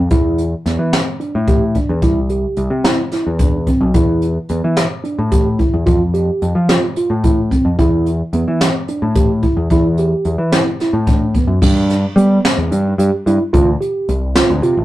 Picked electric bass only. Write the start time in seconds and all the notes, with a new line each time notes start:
0.11 E2
0.66 E2
0.79 E3
1.35 A2
1.89 E2
2.02 C2
2.57 C2
2.70 C3
3.27 E2
3.81 B1
3.94 E2
4.50 E2
4.64 E3
5.19 A2
5.74 E2
5.87 F2
6.42 F2
6.55 F3
7.10 A2
7.65 F2
7.79 E2
8.33 E2
8.48 E3
9.02 A2
9.57 E2
9.71 E2
10.25 E2
10.38 E3
10.93 A2
11.47 F#2
11.62 G2
12.16 G3
12.58 E2
12.71 G2
12.98 G2
13.26 G2
13.53 D2
14.09 C2
14.50 D2
14.64 C3
14.77 A1